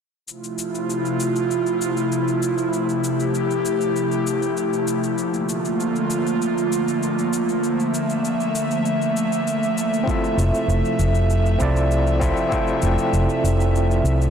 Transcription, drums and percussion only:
0.28 cabasa soft
0.44 cabasa soft
0.59 cabasa medium
0.75 cabasa soft
0.90 cabasa soft
1.05 cabasa soft
1.20 cabasa medium
1.36 cabasa soft
1.51 cabasa soft
1.66 cabasa soft
1.82 cabasa medium
1.97 cabasa soft
2.12 cabasa soft
2.28 cabasa soft
2.42 cabasa medium
2.58 cabasa soft
2.73 cabasa soft
2.89 cabasa soft
3.04 cabasa medium
3.20 cabasa soft
3.35 cabasa soft
3.51 cabasa soft
3.65 cabasa medium
3.81 cabasa soft
3.96 cabasa soft
4.12 cabasa soft
4.27 cabasa medium
4.42 cabasa soft
4.57 cabasa soft
4.73 cabasa soft
4.88 cabasa medium
5.04 cabasa soft
5.18 cabasa soft
5.34 cabasa soft
5.49 cabasa medium
5.65 cabasa soft
5.80 cabasa soft
5.96 cabasa soft
6.10 cabasa medium
6.27 cabasa soft
6.42 cabasa soft
6.58 cabasa soft
6.72 cabasa medium
6.88 cabasa soft
7.03 cabasa soft
7.19 cabasa soft
7.33 cabasa medium
7.49 cabasa soft
7.64 cabasa soft
7.80 cabasa soft
7.94 cabasa medium
8.10 cabasa soft
8.25 cabasa soft
8.40 cabasa soft
8.55 cabasa medium
8.71 cabasa soft
8.86 cabasa soft
9.02 cabasa soft
9.17 cabasa medium
9.32 cabasa soft
9.47 cabasa soft
9.63 cabasa soft
9.78 cabasa medium
9.94 cabasa soft
10.08 kick loud
10.08 cabasa soft
10.24 cabasa soft
10.39 cabasa medium
10.55 cabasa soft
10.70 cabasa soft
10.85 cabasa soft
10.99 cabasa medium
11.15 cabasa soft
11.30 cabasa soft
11.46 cabasa soft
11.60 kick medium
11.60 cabasa medium
11.76 cabasa soft
11.91 cabasa soft
12.07 cabasa soft
12.22 kick loud
12.22 cabasa medium
12.37 cabasa soft
12.52 kick loud
12.52 cabasa soft
12.67 cabasa soft
12.82 cabasa medium
12.98 cabasa soft
13.14 cabasa soft
13.29 cabasa soft
13.45 cabasa medium
13.61 cabasa soft
13.76 cabasa soft
13.91 cabasa soft
14.06 cabasa medium
14.22 cabasa soft

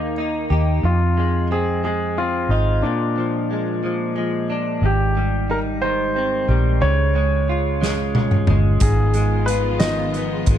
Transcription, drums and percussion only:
7.83 snare soft
8.15 high tom medium
8.31 mid tom medium
8.47 mid tom medium
8.80 kick medium
8.80 closed hi-hat medium
9.14 closed hi-hat soft
9.48 closed hi-hat medium
9.80 snare loud
9.80 closed hi-hat medium
10.14 closed hi-hat soft
10.46 kick medium
10.46 closed hi-hat medium

